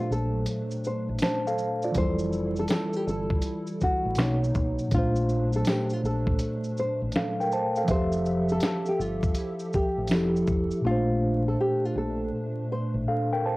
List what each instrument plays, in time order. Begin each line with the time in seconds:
Already playing: tine electric piano A#2 A3 D4 C5, analog synth pad F#3 A3 D4
0.00 nylon-string guitar F4
0.10 fingered electric bass A#1, nylon-string guitar A4, shaker
0.46 closed hi-hat, shaker
0.71 shaker
0.84 nylon-string guitar C5, shaker
1.09 fingered electric bass A1
1.19 snare, closed hi-hat, tambourine, shaker
1.23 tine electric piano C5 A5
1.47 tine electric piano A4 F5, shaker
1.58 shaker
1.82 tine electric piano F4 D5, shaker
1.92 fingered electric bass F1, tine electric piano E3 E4, analog synth pad G3 E4, kick, closed hi-hat, shaker
1.96 analog synth pad E3 A4, tine electric piano G3, nylon-string guitar C5
2.02 tine electric piano A4
2.19 shaker
2.33 shaker
2.56 nylon-string guitar A4, shaker
2.68 snare, closed hi-hat, tambourine, shaker
2.72 nylon-string guitar A4
2.93 nylon-string guitar G4, shaker
3.07 fingered electric bass G1, nylon-string guitar A4, shaker
3.30 kick
3.42 closed hi-hat, shaker
3.67 shaker
3.81 nylon-string guitar F#4, kick, shaker
4.05 fingered electric bass A1
4.15 fingered electric bass B1, tine electric piano B2 A#3, analog synth pad B2 F#3 D#4, snare, closed hi-hat, tambourine, shaker
4.20 tine electric piano D#4 C#5
4.44 shaker
4.55 fingered electric bass B1, kick, shaker
4.79 shaker
4.88 fingered electric bass A#1, tine electric piano A#2 A3, analog synth pad A3 D4, kick, closed hi-hat, shaker
4.94 tine electric piano D4 C5, nylon-string guitar F4
5.16 shaker
5.29 shaker
5.53 nylon-string guitar A4, shaker
5.65 nylon-string guitar G4, snare, closed hi-hat, tambourine, shaker
5.90 nylon-string guitar F4, shaker
6.03 fingered electric bass A#1, nylon-string guitar A4, shaker
6.27 kick
6.39 closed hi-hat, shaker
6.64 shaker
6.77 nylon-string guitar C5, shaker
7.02 fingered electric bass A1
7.12 tine electric piano F5, snare, closed hi-hat, tambourine, shaker
7.16 tine electric piano A4
7.40 tine electric piano A#4 G5, shaker
7.52 tine electric piano C5 A5, shaker
7.75 tine electric piano A4 F5, shaker
7.85 fingered electric bass F1, tine electric piano F3 E5, analog synth pad F3 G4 A4 E5, kick, closed hi-hat, shaker
7.90 tine electric piano G4, nylon-string guitar C5
7.95 tine electric piano A4
8.12 shaker
8.25 shaker
8.49 nylon-string guitar A4, shaker
8.60 snare, closed hi-hat, tambourine, shaker
8.64 nylon-string guitar A4
8.86 nylon-string guitar G4, shaker
8.99 fingered electric bass G1, nylon-string guitar F4, shaker
9.23 kick, shaker
9.35 nylon-string guitar E4, closed hi-hat, shaker
9.59 shaker
9.73 nylon-string guitar G4, kick, shaker
9.98 fingered electric bass A1
10.08 fingered electric bass F1, tine electric piano F3 E4, analog synth pad A4, snare, closed hi-hat, tambourine, shaker
10.13 tine electric piano G4 A4
10.36 shaker
10.47 fingered electric bass F1, kick, shaker
10.71 shaker
10.81 fingered electric bass A#1, tine electric piano A#2 A3, analog synth pad A#2 A3 D4
10.87 tine electric piano D4, nylon-string guitar F4
10.91 tine electric piano C5
11.48 nylon-string guitar A4
11.61 nylon-string guitar G4
11.85 nylon-string guitar F4
11.96 fingered electric bass A#1, nylon-string guitar A4
12.72 nylon-string guitar C5
12.94 fingered electric bass A1
13.08 tine electric piano A4 F5
13.33 tine electric piano A#4 G5
13.46 tine electric piano C5 A5